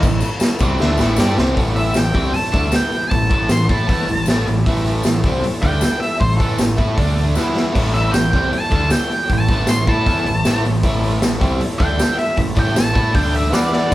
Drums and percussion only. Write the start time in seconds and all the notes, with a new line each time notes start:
0.03 kick, tambourine, crash
0.20 tambourine, crash
0.40 snare, tambourine, crash
0.59 kick, tambourine, crash
0.78 snare, tambourine
0.98 snare, tambourine
1.16 snare, tambourine
1.37 snare, tambourine
1.57 kick, open hi-hat
1.76 open hi-hat
1.94 snare, open hi-hat, tambourine
2.14 kick, open hi-hat
2.34 open hi-hat
2.54 kick, open hi-hat
2.72 snare, open hi-hat, tambourine
2.92 open hi-hat
3.11 kick, open hi-hat
3.31 kick, open hi-hat
3.49 snare, open hi-hat, tambourine
3.69 kick, open hi-hat
3.89 kick, open hi-hat
4.08 open hi-hat
4.26 snare, open hi-hat, tambourine
4.47 open hi-hat
4.66 kick, open hi-hat
4.86 open hi-hat
5.03 snare, open hi-hat, tambourine
5.24 kick, open hi-hat
5.44 open hi-hat
5.63 kick, open hi-hat
5.81 snare, open hi-hat, tambourine
6.03 open hi-hat
6.21 kick, open hi-hat
6.40 kick, open hi-hat
6.58 snare, open hi-hat, tambourine
6.78 kick, open hi-hat
6.98 kick, open hi-hat
7.18 open hi-hat
7.35 snare, tambourine
7.57 snare
7.75 kick, open hi-hat, crash
7.95 open hi-hat
8.14 snare, open hi-hat, tambourine
8.33 kick, open hi-hat
8.53 open hi-hat
8.72 kick, open hi-hat
8.90 snare, open hi-hat, tambourine
9.11 open hi-hat
9.30 kick, open hi-hat
9.48 kick, open hi-hat
9.67 snare, open hi-hat, tambourine
9.87 kick, open hi-hat
10.06 kick, open hi-hat
10.26 open hi-hat
10.45 snare, open hi-hat, tambourine
10.65 open hi-hat
10.83 kick, open hi-hat
11.04 open hi-hat
11.22 snare, open hi-hat, tambourine
11.41 kick, open hi-hat
11.61 open hi-hat
11.80 kick, open hi-hat
11.99 snare, open hi-hat, tambourine
12.19 open hi-hat
12.37 kick, open hi-hat
12.56 kick, open hi-hat
12.76 snare, open hi-hat, tambourine
12.95 kick, open hi-hat
13.15 kick, open hi-hat
13.34 open hi-hat
13.53 snare, open hi-hat, tambourine
13.73 snare